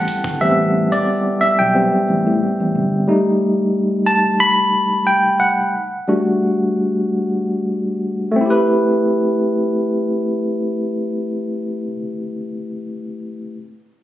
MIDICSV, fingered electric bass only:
0, 0, Header, 1, 3, 480
1, 0, Start_track
1, 0, Tempo, 666667
1, 284, Time_signature, 4, 2, 24, 8
1, 10104, End_track
2, 0, Start_track
2, 0, Title_t, "Fingered electric bass"
2, 0, Program_c, 0, 33
2, 181, Note_on_c, 0, 31, 74
2, 276, Note_off_c, 0, 31, 0
2, 297, Note_on_c, 0, 33, 84
2, 624, Note_off_c, 0, 33, 0
2, 1150, Note_on_c, 0, 35, 74
2, 1358, Note_off_c, 0, 35, 0
2, 1500, Note_on_c, 0, 33, 74
2, 1610, Note_off_c, 0, 33, 0
2, 1631, Note_on_c, 0, 45, 79
2, 1721, Note_off_c, 0, 45, 0
2, 1871, Note_on_c, 0, 33, 72
2, 1979, Note_on_c, 0, 31, 81
2, 1990, Note_off_c, 0, 33, 0
2, 2187, Note_off_c, 0, 31, 0
2, 10104, End_track
3, 0, Start_track
3, 0, Title_t, "Muted fingered electric bass strokes"
3, 671, Note_on_c, 9, 29, 44
3, 743, Note_off_c, 9, 29, 0
3, 1019, Note_on_c, 9, 29, 42
3, 1091, Note_off_c, 9, 29, 0
3, 10104, End_track
0, 0, End_of_file